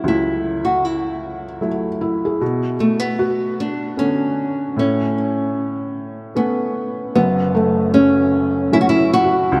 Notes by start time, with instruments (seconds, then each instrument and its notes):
Already playing: upright piano F#3 A3 E4, felt piano C#4 E4 F#4
0.04 upright piano C#2, felt piano F#3
0.08 nylon-string guitar E4
0.65 nylon-string guitar F#4
0.85 nylon-string guitar E4
1.61 upright piano F#3 A3 E4
2.01 felt piano E4
2.25 felt piano G#4
2.41 upright piano B2
2.80 nylon-string guitar A3
2.99 nylon-string guitar B3
3.19 felt piano F#4
3.60 nylon-string guitar D4
3.97 upright piano D3 B3 C#4, nylon-string guitar C#4
4.76 upright piano A2, nylon-string guitar C#4
6.35 upright piano A3 B3 C#4, nylon-string guitar B3, felt piano C#4
7.15 upright piano F#1 F#2, nylon-string guitar B3
7.55 felt piano A3
7.94 upright piano F#3 A3 C#4, nylon-string guitar C#4
8.72 upright piano F#3 A3 C#4, felt piano C#4, nylon-string guitar E4
8.81 nylon-string guitar F#4
8.89 nylon-string guitar E4
8.98 felt piano E4
9.13 nylon-string guitar F#4
9.24 felt piano F#4
9.52 upright piano C#2